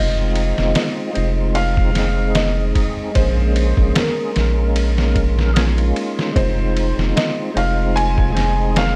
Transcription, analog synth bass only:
Already playing: F1
0.59 F1
1.17 F1
3.16 A#1
3.78 A#1
4.37 A#1
6.36 F1
6.98 F1
7.56 F1

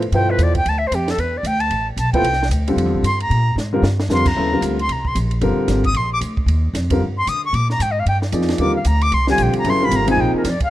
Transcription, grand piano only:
0.14 B2 F3 E4 A4 C5
2.14 F3 B3 E4 A4 C5
2.68 D3 G3 C4 F4 A4
3.73 D3 G3 C4 F4 A#4
4.11 D3 G3 C4 F4 A#4
4.36 C#3 F#3 B3 E4 A4
4.52 D3 G3 C4 F4 A#4
5.41 D3 G3 C4 F4 A#4
6.91 D3 G3 C4 F4 A#4
8.33 F3 A#3 D#4 G#4 D5
8.60 D3 G3 C4 F4 A#4
9.28 D3 G3 C4 F4 G4
9.65 C#3 F#3 B3 E4 A4
9.81 D3 G3 C4 F4 A#4
10.07 C3 F3 A#3 D#4 G#4

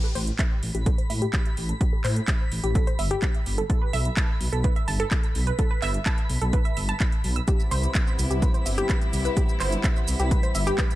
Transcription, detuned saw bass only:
0.15 A1
0.63 A1
0.75 A1
1.10 A2
1.57 A1
2.04 A2
2.52 A1
2.64 A1
2.99 G1
3.46 G1
3.93 B1
4.41 B1
4.53 B1
4.88 G1
5.35 B1
5.82 G1
6.30 B1
6.42 B1
6.77 G1
7.24 B1
7.71 C2
8.19 C2
8.31 C2
8.66 G1
9.13 C2
9.60 G1
10.08 C2
10.19 C2
10.55 G1

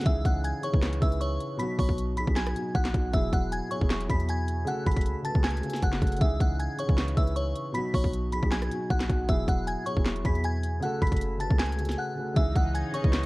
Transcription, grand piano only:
0.03 C#3 E3 D#4
0.08 G#4
0.61 C#3 E3 D#4
0.66 G#4
0.71 C#3 E3 D#4
0.76 B4
1.00 C#3 E3 D#4
1.04 B4
1.57 B2 F#3 D#4
1.62 F#4
2.15 B2 F#3 D#4
2.20 G#4
2.25 B2 F#3 D#4
2.30 G#4
2.53 B2 F#3 D#4
2.58 F#4
2.92 B2 F#3 D#4
2.97 F#4
3.11 B2 F#3 E4
3.16 G#4
3.69 B2 F#3 E4
3.74 G#4
3.79 B2 F#3 E4
3.84 G#4
4.07 B2 F#3 E4
4.12 G#4
4.65 C#3 A3 F#4
4.69 A4
5.23 C#3 A3 F#4
5.27 B4
5.33 C#3 A3 F#4
5.38 G#4
5.61 C#3 A3 F#4
5.66 A4
6.00 C#3 A3 F#4
6.04 A4
6.19 C#3 E3 D#4
6.24 G#4
6.76 C#3 E3 D#4
6.81 G#4
6.87 C#3 E3 D#4
6.91 B4
7.15 C#3 E3 D#4
7.20 B4
7.73 B2 F#3 D#4
7.77 F#4
8.31 B2 F#3 D#4
8.35 G#4
8.40 B2 F#3 D#4
8.45 G#4
8.69 B2 F#3 D#4
8.73 F#4
9.07 B2 F#3 D#4
9.12 F#4
9.27 B2 F#3 E4
9.31 G#4
9.84 B2 F#3 E4
9.89 G#4
9.94 B2 F#3 E4
9.99 G#4
10.23 B2 F#3 E4
10.28 G#4
10.80 C#3 A3 F#4
10.85 A4
11.38 C#3 A3 F#4
11.43 B4
11.48 C#3 A3 F#4
11.53 G#4
11.77 C#3 A3 F#4
11.81 A4
12.15 C#3 A3 F#4
12.20 A4
12.34 C#3 E3 D#4
12.39 G#4
12.92 C#3 E3 D#4
12.97 G#4
13.02 C#3 E3 D#4
13.07 B4

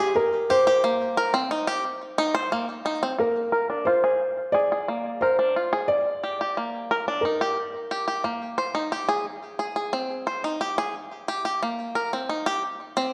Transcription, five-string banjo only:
0.00 G#4
0.50 G4
0.67 G4
0.84 A#3
1.17 A#4
1.34 C4
1.51 D#4
1.67 G4
2.18 D#4
2.35 C5
2.52 A#3
2.86 D#4
3.03 C4
3.18 A#3
3.52 A#4
3.70 D4
3.87 F4
4.04 G#4
4.54 G#4
4.72 G#4
4.88 A#3
5.22 A#4
5.39 D4
5.56 F4
5.73 G#4
6.24 G4
6.41 G4
6.57 A#3
6.91 A#4
7.08 D4
7.25 D#4
7.41 G4
7.91 G4
8.08 G4
8.24 A#3
8.58 C5
8.75 D#4
8.92 G4
9.09 G#4
9.59 G#4
9.76 G#4
9.93 C4
10.27 C5
10.44 D#4
10.61 G4
10.78 G#4
11.28 G4
11.45 G4
11.63 A#3
11.95 A#4
12.13 C4
12.29 D#4
12.46 G4
12.97 C4

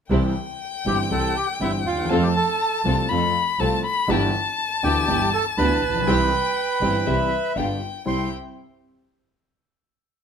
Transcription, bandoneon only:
0.87 G4 G5
1.11 A4 A5
1.36 G4 G5
1.61 E4 E5
1.86 F4 F5
2.22 G4 G5
2.36 A4 A5
4.83 G4 G5
5.33 A4 A5
5.58 B4 B5
8.07 C6

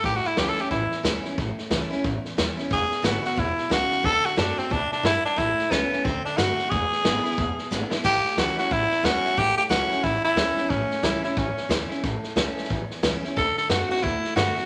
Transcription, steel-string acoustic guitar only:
0.04 A2
0.38 E3 G3 C#4 E4
0.57 C#4 E4
0.71 E2
1.03 E3 G3 C#4 E4
1.23 C#4 E4
1.38 A2
1.71 E3 G3 C#4 E4
1.90 C#4 E4
2.04 E2
2.37 E3 G3 C#4 E4
2.57 C#4 E4
2.70 E2
3.02 D3 G#3 B3 E4
3.22 B3 E4
3.36 B2
3.70 C#3
4.03 D3
4.36 D3 A3 C4 F#4
4.56 C4 F#4
4.70 C3
5.03 G2
5.36 A2
5.71 E3 G3 C#4 E4
5.91 C#4 E4
6.05 D3
6.37 D3 A3 C4 F#4
6.57 C4 F#4
6.71 E2
7.04 D3 G#3 B3 E4
7.23 B3 E4
7.37 B2
7.71 D3 G#3 B3 E4
7.90 B3 E4
8.04 A2
8.38 E3 G3 C#4 E4
8.57 C#4 E4
8.71 E2
9.03 E3 G3 C#4 E4
9.37 A2
9.69 E3 G3 C#4 E4
9.89 C#4 E4
10.03 E2
10.36 E3 G3 C#4 E4
10.56 C#4 E4
10.70 A2
11.03 E3 G3 C#4 E4
11.22 C#4 E4
11.69 E3 G3 C#4 E4
11.89 C#4 E4
12.04 A2
12.36 E3 G3 C#4 E4
12.70 E2
13.03 E3 G3 C#4 E4
13.22 C#4 E4
13.36 D3
13.69 D3 A3 C4 F#4
13.89 C4 F#4
14.02 A2
14.36 D3 A3 C4 F#4
14.55 C4 F#4

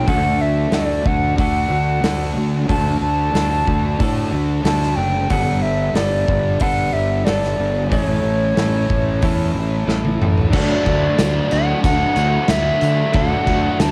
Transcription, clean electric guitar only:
Already playing: F#3
0.07 D3 D4 F#4 A4
0.72 D3 D4 F#4 A4
1.37 D3 D4 F#4 A4
2.02 D3 D4 F#4 A4
2.68 D3 D4 F#4 A4
3.33 D3 D4 F#4 A4
3.99 D3 D4 F#4 A4
4.64 D3 D4 F#4 A4
5.30 G3 B3 D4 A4
5.94 G3 B3 D4 A4
6.60 G3 B3 D4 A4
7.25 G3 B3 D4 A4
7.91 A2 A3 C#4 E4 A4
8.56 A3 C#4 E4 A4
9.21 A2 A3 C#4 E4 A4
9.86 A3 C#4 E4 A4
10.51 D3 D4 F#4 A4
13.12 D3 D4 F#4 A4

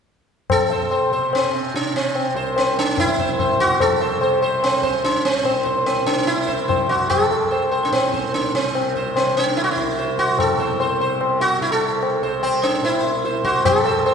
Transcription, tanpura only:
0.51 B2
1.10 C3
1.74 C3
2.34 C2
2.97 B2
3.58 C3
4.20 C3
4.82 C2
5.43 B2
6.05 C3
6.68 C3
7.29 C2
7.91 B2
8.53 C3
9.15 C3
9.76 C2
10.37 B2
11.00 C3
11.60 C3
12.21 C2
12.82 B2
13.43 C3
13.64 B2

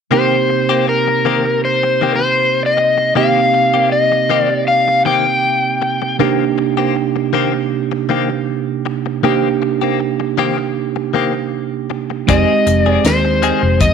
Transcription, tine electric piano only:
0.10 C3 A#3 C4 D#4 G4
3.15 C3 A#3 C4 D#4 G4
6.19 C3 A#3 D4 D#4 G4
9.23 C3 A#3 D4 D#4 G4
12.27 G#3 C4 D#4 G4

